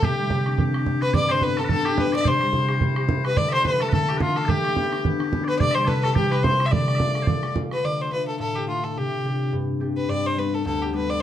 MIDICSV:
0, 0, Header, 1, 5, 480
1, 0, Start_track
1, 0, Tempo, 279590
1, 41, Time_signature, 4, 2, 24, 8
1, 19266, End_track
2, 0, Start_track
2, 0, Title_t, "Bagpipes"
2, 0, Program_c, 0, 109
2, 54, Note_on_c, 0, 67, 52
2, 1743, Note_off_c, 0, 67, 0
2, 1743, Note_on_c, 0, 71, 79
2, 1947, Note_off_c, 0, 71, 0
2, 1947, Note_on_c, 0, 74, 77
2, 2213, Note_off_c, 0, 74, 0
2, 2213, Note_on_c, 0, 72, 78
2, 2425, Note_off_c, 0, 72, 0
2, 2425, Note_on_c, 0, 71, 80
2, 2692, Note_off_c, 0, 71, 0
2, 2692, Note_on_c, 0, 69, 72
2, 2823, Note_off_c, 0, 69, 0
2, 2823, Note_on_c, 0, 71, 87
2, 2896, Note_off_c, 0, 71, 0
2, 2896, Note_on_c, 0, 69, 87
2, 3180, Note_off_c, 0, 69, 0
2, 3180, Note_on_c, 0, 67, 62
2, 3393, Note_off_c, 0, 67, 0
2, 3393, Note_on_c, 0, 71, 62
2, 3642, Note_off_c, 0, 71, 0
2, 3642, Note_on_c, 0, 74, 75
2, 3790, Note_off_c, 0, 74, 0
2, 3790, Note_on_c, 0, 76, 59
2, 3850, Note_off_c, 0, 76, 0
2, 3850, Note_on_c, 0, 72, 59
2, 5560, Note_off_c, 0, 72, 0
2, 5560, Note_on_c, 0, 71, 69
2, 5786, Note_off_c, 0, 71, 0
2, 5786, Note_on_c, 0, 74, 70
2, 5983, Note_off_c, 0, 74, 0
2, 5983, Note_on_c, 0, 76, 74
2, 6052, Note_off_c, 0, 76, 0
2, 6052, Note_on_c, 0, 72, 74
2, 6206, Note_off_c, 0, 72, 0
2, 6206, Note_on_c, 0, 72, 53
2, 6268, Note_off_c, 0, 72, 0
2, 6268, Note_on_c, 0, 71, 71
2, 6528, Note_off_c, 0, 71, 0
2, 6528, Note_on_c, 0, 69, 77
2, 6674, Note_off_c, 0, 69, 0
2, 6675, Note_on_c, 0, 71, 78
2, 6744, Note_off_c, 0, 71, 0
2, 6744, Note_on_c, 0, 69, 78
2, 7160, Note_off_c, 0, 69, 0
2, 7160, Note_on_c, 0, 71, 58
2, 7226, Note_off_c, 0, 71, 0
2, 7226, Note_on_c, 0, 65, 58
2, 7636, Note_off_c, 0, 65, 0
2, 7636, Note_on_c, 0, 69, 57
2, 7698, Note_off_c, 0, 69, 0
2, 7698, Note_on_c, 0, 67, 57
2, 9343, Note_off_c, 0, 67, 0
2, 9343, Note_on_c, 0, 74, 66
2, 9404, Note_off_c, 0, 74, 0
2, 9404, Note_on_c, 0, 71, 66
2, 9617, Note_off_c, 0, 71, 0
2, 9617, Note_on_c, 0, 74, 91
2, 9802, Note_off_c, 0, 74, 0
2, 9802, Note_on_c, 0, 76, 81
2, 9875, Note_off_c, 0, 76, 0
2, 9875, Note_on_c, 0, 72, 81
2, 10041, Note_off_c, 0, 72, 0
2, 10041, Note_on_c, 0, 74, 78
2, 10097, Note_off_c, 0, 74, 0
2, 10097, Note_on_c, 0, 71, 78
2, 10364, Note_off_c, 0, 71, 0
2, 10364, Note_on_c, 0, 69, 66
2, 10567, Note_off_c, 0, 69, 0
2, 10567, Note_on_c, 0, 67, 75
2, 10844, Note_off_c, 0, 67, 0
2, 10844, Note_on_c, 0, 71, 61
2, 11041, Note_off_c, 0, 71, 0
2, 11041, Note_on_c, 0, 72, 66
2, 11470, Note_off_c, 0, 72, 0
2, 11470, Note_on_c, 0, 76, 66
2, 11539, Note_off_c, 0, 76, 0
2, 11539, Note_on_c, 0, 74, 66
2, 11931, Note_off_c, 0, 74, 0
2, 11931, Note_on_c, 0, 76, 48
2, 11979, Note_off_c, 0, 76, 0
2, 11979, Note_on_c, 0, 74, 73
2, 12404, Note_off_c, 0, 74, 0
2, 12404, Note_on_c, 0, 72, 49
2, 12480, Note_off_c, 0, 72, 0
2, 12480, Note_on_c, 0, 74, 68
2, 12969, Note_off_c, 0, 74, 0
2, 19266, End_track
3, 0, Start_track
3, 0, Title_t, "Fiddle"
3, 0, Program_c, 1, 110
3, 75, Note_on_c, 1, 67, 75
3, 1014, Note_off_c, 1, 67, 0
3, 1752, Note_on_c, 1, 71, 97
3, 1944, Note_off_c, 1, 71, 0
3, 1987, Note_on_c, 1, 74, 97
3, 2259, Note_on_c, 1, 72, 90
3, 2284, Note_off_c, 1, 74, 0
3, 2455, Note_on_c, 1, 71, 88
3, 2481, Note_off_c, 1, 72, 0
3, 2732, Note_on_c, 1, 69, 79
3, 2758, Note_off_c, 1, 71, 0
3, 2927, Note_off_c, 1, 69, 0
3, 2945, Note_on_c, 1, 69, 92
3, 3193, Note_on_c, 1, 67, 87
3, 3218, Note_off_c, 1, 69, 0
3, 3435, Note_on_c, 1, 71, 100
3, 3461, Note_off_c, 1, 67, 0
3, 3680, Note_off_c, 1, 71, 0
3, 3702, Note_on_c, 1, 74, 90
3, 3918, Note_on_c, 1, 72, 86
3, 3943, Note_off_c, 1, 74, 0
3, 4851, Note_off_c, 1, 72, 0
3, 5604, Note_on_c, 1, 71, 89
3, 5787, Note_on_c, 1, 74, 99
3, 5812, Note_off_c, 1, 71, 0
3, 6053, Note_off_c, 1, 74, 0
3, 6066, Note_on_c, 1, 72, 102
3, 6257, Note_off_c, 1, 72, 0
3, 6291, Note_on_c, 1, 71, 88
3, 6558, Note_on_c, 1, 69, 83
3, 6583, Note_off_c, 1, 71, 0
3, 6736, Note_off_c, 1, 69, 0
3, 6746, Note_on_c, 1, 69, 82
3, 7028, Note_on_c, 1, 67, 76
3, 7054, Note_off_c, 1, 69, 0
3, 7227, Note_off_c, 1, 67, 0
3, 7238, Note_on_c, 1, 65, 87
3, 7501, Note_on_c, 1, 69, 83
3, 7526, Note_off_c, 1, 65, 0
3, 7723, Note_on_c, 1, 67, 91
3, 7749, Note_off_c, 1, 69, 0
3, 8671, Note_off_c, 1, 67, 0
3, 9422, Note_on_c, 1, 71, 91
3, 9585, Note_off_c, 1, 71, 0
3, 9595, Note_on_c, 1, 74, 110
3, 9871, Note_on_c, 1, 72, 95
3, 9897, Note_off_c, 1, 74, 0
3, 10067, Note_on_c, 1, 69, 68
3, 10083, Note_on_c, 1, 71, 92
3, 10092, Note_off_c, 1, 72, 0
3, 10108, Note_off_c, 1, 69, 0
3, 10343, Note_off_c, 1, 71, 0
3, 10353, Note_on_c, 1, 69, 88
3, 10548, Note_off_c, 1, 69, 0
3, 10558, Note_on_c, 1, 67, 84
3, 10830, Note_on_c, 1, 71, 83
3, 10856, Note_off_c, 1, 67, 0
3, 11040, Note_on_c, 1, 72, 92
3, 11066, Note_off_c, 1, 71, 0
3, 11434, Note_on_c, 1, 76, 78
3, 11460, Note_off_c, 1, 72, 0
3, 11524, Note_on_c, 1, 74, 92
3, 11550, Note_off_c, 1, 76, 0
3, 12971, Note_off_c, 1, 74, 0
3, 13271, Note_on_c, 1, 71, 88
3, 13479, Note_on_c, 1, 74, 80
3, 13504, Note_off_c, 1, 71, 0
3, 13760, Note_on_c, 1, 72, 75
3, 13786, Note_off_c, 1, 74, 0
3, 13940, Note_off_c, 1, 72, 0
3, 13950, Note_on_c, 1, 71, 80
3, 14196, Note_off_c, 1, 71, 0
3, 14205, Note_on_c, 1, 69, 67
3, 14400, Note_off_c, 1, 69, 0
3, 14411, Note_on_c, 1, 69, 78
3, 14688, Note_on_c, 1, 67, 72
3, 14713, Note_off_c, 1, 69, 0
3, 14897, Note_off_c, 1, 67, 0
3, 14907, Note_on_c, 1, 65, 81
3, 15172, Note_on_c, 1, 69, 69
3, 15197, Note_off_c, 1, 65, 0
3, 15406, Note_on_c, 1, 67, 75
3, 15432, Note_off_c, 1, 69, 0
3, 16360, Note_off_c, 1, 67, 0
3, 17111, Note_on_c, 1, 71, 75
3, 17339, Note_on_c, 1, 74, 86
3, 17365, Note_off_c, 1, 71, 0
3, 17622, Note_on_c, 1, 72, 85
3, 17648, Note_off_c, 1, 74, 0
3, 17828, Note_on_c, 1, 71, 76
3, 17854, Note_off_c, 1, 72, 0
3, 18100, Note_on_c, 1, 69, 71
3, 18126, Note_off_c, 1, 71, 0
3, 18294, Note_off_c, 1, 69, 0
3, 18301, Note_on_c, 1, 69, 82
3, 18578, Note_on_c, 1, 67, 65
3, 18604, Note_off_c, 1, 69, 0
3, 18773, Note_off_c, 1, 67, 0
3, 18802, Note_on_c, 1, 71, 78
3, 19051, Note_on_c, 1, 74, 90
3, 19077, Note_off_c, 1, 71, 0
3, 19264, Note_off_c, 1, 74, 0
3, 19266, End_track
4, 0, Start_track
4, 0, Title_t, "Harp"
4, 0, Program_c, 2, 46
4, 0, Note_on_c, 2, 57, 51
4, 0, Note_on_c, 2, 60, 41
4, 0, Note_on_c, 2, 62, 41
4, 0, Note_on_c, 2, 65, 55
4, 50, Note_on_c, 2, 48, 63
4, 322, Note_on_c, 2, 55, 48
4, 535, Note_off_c, 2, 60, 0
4, 542, Note_on_c, 2, 60, 48
4, 800, Note_off_c, 2, 62, 0
4, 807, Note_on_c, 2, 62, 62
4, 1005, Note_off_c, 2, 60, 0
4, 1012, Note_on_c, 2, 60, 58
4, 1263, Note_off_c, 2, 62, 0
4, 1270, Note_on_c, 2, 62, 55
4, 1479, Note_off_c, 2, 60, 0
4, 1485, Note_on_c, 2, 60, 55
4, 1744, Note_off_c, 2, 62, 0
4, 1751, Note_on_c, 2, 62, 52
4, 1952, Note_on_c, 2, 43, 59
4, 1986, Note_off_c, 2, 65, 0
4, 2040, Note_off_c, 2, 48, 0
4, 2040, Note_off_c, 2, 55, 0
4, 2226, Note_on_c, 2, 50, 44
4, 2445, Note_on_c, 2, 59, 57
4, 2548, Note_off_c, 2, 60, 0
4, 2707, Note_off_c, 2, 62, 0
4, 2714, Note_on_c, 2, 62, 63
4, 2919, Note_off_c, 2, 59, 0
4, 2926, Note_on_c, 2, 59, 61
4, 3199, Note_off_c, 2, 62, 0
4, 3206, Note_on_c, 2, 62, 55
4, 3413, Note_off_c, 2, 59, 0
4, 3420, Note_on_c, 2, 59, 50
4, 3668, Note_off_c, 2, 62, 0
4, 3675, Note_on_c, 2, 62, 42
4, 3894, Note_on_c, 2, 48, 58
4, 3955, Note_off_c, 2, 43, 0
4, 3955, Note_off_c, 2, 50, 0
4, 3997, Note_off_c, 2, 59, 0
4, 4152, Note_on_c, 2, 55, 41
4, 4352, Note_on_c, 2, 64, 52
4, 4607, Note_on_c, 2, 67, 56
4, 4817, Note_off_c, 2, 64, 0
4, 4824, Note_on_c, 2, 64, 63
4, 5093, Note_off_c, 2, 67, 0
4, 5100, Note_on_c, 2, 67, 54
4, 5294, Note_off_c, 2, 64, 0
4, 5301, Note_on_c, 2, 64, 58
4, 5565, Note_off_c, 2, 57, 0
4, 5568, Note_off_c, 2, 67, 0
4, 5575, Note_on_c, 2, 67, 43
4, 5777, Note_on_c, 2, 50, 56
4, 5871, Note_off_c, 2, 48, 0
4, 5871, Note_off_c, 2, 55, 0
4, 6035, Note_on_c, 2, 57, 42
4, 6220, Note_off_c, 2, 50, 0
4, 6241, Note_on_c, 2, 50, 48
4, 6531, Note_off_c, 2, 57, 0
4, 6538, Note_on_c, 2, 57, 62
4, 6727, Note_off_c, 2, 50, 0
4, 6747, Note_on_c, 2, 50, 61
4, 7003, Note_off_c, 2, 57, 0
4, 7010, Note_on_c, 2, 57, 50
4, 7201, Note_off_c, 2, 50, 0
4, 7222, Note_on_c, 2, 50, 58
4, 7490, Note_off_c, 2, 57, 0
4, 7497, Note_on_c, 2, 57, 50
4, 7689, Note_off_c, 2, 50, 0
4, 7709, Note_on_c, 2, 50, 63
4, 7972, Note_off_c, 2, 57, 0
4, 7978, Note_on_c, 2, 57, 42
4, 8187, Note_on_c, 2, 59, 54
4, 8428, Note_off_c, 2, 62, 0
4, 8434, Note_on_c, 2, 62, 59
4, 8634, Note_off_c, 2, 59, 0
4, 8641, Note_on_c, 2, 59, 62
4, 8906, Note_off_c, 2, 62, 0
4, 8912, Note_on_c, 2, 62, 64
4, 9118, Note_off_c, 2, 59, 0
4, 9125, Note_on_c, 2, 59, 54
4, 9391, Note_off_c, 2, 62, 0
4, 9398, Note_on_c, 2, 62, 40
4, 9599, Note_on_c, 2, 48, 58
4, 9616, Note_off_c, 2, 67, 0
4, 9702, Note_off_c, 2, 59, 0
4, 9705, Note_off_c, 2, 50, 0
4, 9785, Note_off_c, 2, 64, 0
4, 9880, Note_on_c, 2, 55, 45
4, 10108, Note_on_c, 2, 64, 50
4, 10356, Note_off_c, 2, 48, 0
4, 10377, Note_on_c, 2, 48, 56
4, 10567, Note_off_c, 2, 55, 0
4, 10588, Note_on_c, 2, 55, 56
4, 10823, Note_off_c, 2, 64, 0
4, 10829, Note_on_c, 2, 64, 58
4, 11022, Note_off_c, 2, 48, 0
4, 11043, Note_on_c, 2, 48, 57
4, 11315, Note_off_c, 2, 64, 0
4, 11322, Note_on_c, 2, 64, 43
4, 11517, Note_on_c, 2, 50, 57
4, 11623, Note_off_c, 2, 48, 0
4, 11623, Note_off_c, 2, 55, 0
4, 11797, Note_off_c, 2, 57, 0
4, 11804, Note_on_c, 2, 57, 45
4, 12027, Note_on_c, 2, 65, 50
4, 12130, Note_off_c, 2, 64, 0
4, 12293, Note_on_c, 2, 69, 53
4, 12489, Note_off_c, 2, 65, 0
4, 12496, Note_on_c, 2, 65, 55
4, 12771, Note_off_c, 2, 69, 0
4, 12778, Note_on_c, 2, 69, 52
4, 12974, Note_off_c, 2, 65, 0
4, 12981, Note_on_c, 2, 65, 57
4, 13242, Note_off_c, 2, 69, 0
4, 13249, Note_on_c, 2, 69, 42
4, 13430, Note_off_c, 2, 50, 0
4, 13450, Note_on_c, 2, 50, 57
4, 13916, Note_off_c, 2, 57, 0
4, 13923, Note_on_c, 2, 57, 37
4, 13925, Note_off_c, 2, 62, 0
4, 13932, Note_on_c, 2, 62, 31
4, 13939, Note_off_c, 2, 65, 0
4, 13946, Note_on_c, 2, 65, 39
4, 14407, Note_on_c, 2, 45, 59
4, 14508, Note_off_c, 2, 50, 0
4, 14886, Note_off_c, 2, 57, 0
4, 14893, Note_on_c, 2, 57, 42
4, 14900, Note_off_c, 2, 62, 0
4, 14904, Note_off_c, 2, 65, 0
4, 14907, Note_on_c, 2, 62, 41
4, 14911, Note_on_c, 2, 65, 44
4, 15396, Note_on_c, 2, 48, 46
4, 15472, Note_off_c, 2, 45, 0
4, 15875, Note_on_c, 2, 60, 34
4, 15878, Note_off_c, 2, 62, 0
4, 15885, Note_on_c, 2, 62, 38
4, 15895, Note_on_c, 2, 67, 47
4, 16352, Note_on_c, 2, 43, 62
4, 16436, Note_off_c, 2, 48, 0
4, 16814, Note_off_c, 2, 60, 0
4, 16821, Note_on_c, 2, 60, 41
4, 16822, Note_off_c, 2, 62, 0
4, 16829, Note_on_c, 2, 62, 35
4, 16832, Note_off_c, 2, 67, 0
4, 16839, Note_on_c, 2, 67, 55
4, 17019, Note_off_c, 2, 69, 0
4, 17293, Note_off_c, 2, 43, 0
4, 17313, Note_on_c, 2, 43, 62
4, 17798, Note_on_c, 2, 55, 34
4, 17801, Note_on_c, 2, 59, 36
4, 17812, Note_off_c, 2, 62, 0
4, 17819, Note_on_c, 2, 62, 38
4, 17904, Note_off_c, 2, 60, 0
4, 18285, Note_on_c, 2, 38, 60
4, 18362, Note_off_c, 2, 43, 0
4, 18736, Note_off_c, 2, 55, 0
4, 18755, Note_off_c, 2, 59, 0
4, 18756, Note_on_c, 2, 55, 43
4, 18762, Note_on_c, 2, 59, 41
4, 18766, Note_off_c, 2, 62, 0
4, 18772, Note_on_c, 2, 62, 49
4, 19242, Note_off_c, 2, 65, 0
4, 19266, Note_off_c, 2, 38, 0
4, 19266, Note_off_c, 2, 55, 0
4, 19266, Note_off_c, 2, 57, 0
4, 19266, Note_off_c, 2, 59, 0
4, 19266, Note_off_c, 2, 62, 0
4, 19266, Note_off_c, 2, 67, 0
4, 19266, End_track
5, 0, Start_track
5, 0, Title_t, "Bodhran"
5, 42, Note_on_c, 9, 64, 80
5, 214, Note_off_c, 9, 64, 0
5, 520, Note_on_c, 9, 64, 76
5, 692, Note_off_c, 9, 64, 0
5, 790, Note_on_c, 9, 64, 56
5, 962, Note_off_c, 9, 64, 0
5, 1002, Note_on_c, 9, 64, 80
5, 1174, Note_off_c, 9, 64, 0
5, 1276, Note_on_c, 9, 64, 57
5, 1448, Note_off_c, 9, 64, 0
5, 1484, Note_on_c, 9, 64, 71
5, 1655, Note_off_c, 9, 64, 0
5, 1750, Note_on_c, 9, 64, 51
5, 1922, Note_off_c, 9, 64, 0
5, 1953, Note_on_c, 9, 64, 75
5, 2125, Note_off_c, 9, 64, 0
5, 2225, Note_on_c, 9, 64, 51
5, 2397, Note_off_c, 9, 64, 0
5, 2430, Note_on_c, 9, 64, 68
5, 2602, Note_off_c, 9, 64, 0
5, 2695, Note_on_c, 9, 64, 55
5, 2866, Note_off_c, 9, 64, 0
5, 2906, Note_on_c, 9, 64, 71
5, 3078, Note_off_c, 9, 64, 0
5, 3183, Note_on_c, 9, 64, 60
5, 3355, Note_off_c, 9, 64, 0
5, 3396, Note_on_c, 9, 64, 88
5, 3567, Note_off_c, 9, 64, 0
5, 3660, Note_on_c, 9, 64, 57
5, 3832, Note_off_c, 9, 64, 0
5, 3865, Note_on_c, 9, 64, 75
5, 4037, Note_off_c, 9, 64, 0
5, 4134, Note_on_c, 9, 64, 52
5, 4305, Note_off_c, 9, 64, 0
5, 4341, Note_on_c, 9, 64, 72
5, 4513, Note_off_c, 9, 64, 0
5, 4610, Note_on_c, 9, 64, 60
5, 4782, Note_off_c, 9, 64, 0
5, 4822, Note_on_c, 9, 64, 71
5, 4993, Note_off_c, 9, 64, 0
5, 5086, Note_on_c, 9, 64, 62
5, 5258, Note_off_c, 9, 64, 0
5, 5299, Note_on_c, 9, 64, 95
5, 5470, Note_off_c, 9, 64, 0
5, 5574, Note_on_c, 9, 64, 61
5, 5745, Note_off_c, 9, 64, 0
5, 5781, Note_on_c, 9, 64, 76
5, 5953, Note_off_c, 9, 64, 0
5, 6054, Note_on_c, 9, 64, 58
5, 6226, Note_off_c, 9, 64, 0
5, 6264, Note_on_c, 9, 64, 76
5, 6436, Note_off_c, 9, 64, 0
5, 6527, Note_on_c, 9, 64, 53
5, 6698, Note_off_c, 9, 64, 0
5, 6739, Note_on_c, 9, 64, 80
5, 6911, Note_off_c, 9, 64, 0
5, 7015, Note_on_c, 9, 64, 59
5, 7187, Note_off_c, 9, 64, 0
5, 7218, Note_on_c, 9, 64, 78
5, 7390, Note_off_c, 9, 64, 0
5, 7485, Note_on_c, 9, 64, 58
5, 7657, Note_off_c, 9, 64, 0
5, 7701, Note_on_c, 9, 64, 81
5, 7873, Note_off_c, 9, 64, 0
5, 7972, Note_on_c, 9, 64, 52
5, 8144, Note_off_c, 9, 64, 0
5, 8181, Note_on_c, 9, 64, 76
5, 8353, Note_off_c, 9, 64, 0
5, 8456, Note_on_c, 9, 64, 54
5, 8628, Note_off_c, 9, 64, 0
5, 8668, Note_on_c, 9, 64, 73
5, 8839, Note_off_c, 9, 64, 0
5, 8930, Note_on_c, 9, 64, 62
5, 9101, Note_off_c, 9, 64, 0
5, 9145, Note_on_c, 9, 64, 82
5, 9317, Note_off_c, 9, 64, 0
5, 9405, Note_on_c, 9, 64, 49
5, 9576, Note_off_c, 9, 64, 0
5, 9620, Note_on_c, 9, 64, 78
5, 9791, Note_off_c, 9, 64, 0
5, 9881, Note_on_c, 9, 64, 48
5, 10053, Note_off_c, 9, 64, 0
5, 10089, Note_on_c, 9, 64, 69
5, 10261, Note_off_c, 9, 64, 0
5, 10361, Note_on_c, 9, 64, 57
5, 10533, Note_off_c, 9, 64, 0
5, 10574, Note_on_c, 9, 64, 80
5, 10745, Note_off_c, 9, 64, 0
5, 10848, Note_on_c, 9, 64, 59
5, 11019, Note_off_c, 9, 64, 0
5, 11059, Note_on_c, 9, 64, 92
5, 11231, Note_off_c, 9, 64, 0
5, 11332, Note_on_c, 9, 64, 66
5, 11504, Note_off_c, 9, 64, 0
5, 11548, Note_on_c, 9, 64, 95
5, 11720, Note_off_c, 9, 64, 0
5, 11813, Note_on_c, 9, 64, 56
5, 11984, Note_off_c, 9, 64, 0
5, 12014, Note_on_c, 9, 64, 82
5, 12185, Note_off_c, 9, 64, 0
5, 12278, Note_on_c, 9, 64, 54
5, 12450, Note_off_c, 9, 64, 0
5, 12485, Note_on_c, 9, 64, 83
5, 12657, Note_off_c, 9, 64, 0
5, 12756, Note_on_c, 9, 64, 59
5, 12927, Note_off_c, 9, 64, 0
5, 12973, Note_on_c, 9, 64, 83
5, 13145, Note_off_c, 9, 64, 0
5, 13244, Note_on_c, 9, 64, 54
5, 13415, Note_off_c, 9, 64, 0
5, 19266, End_track
0, 0, End_of_file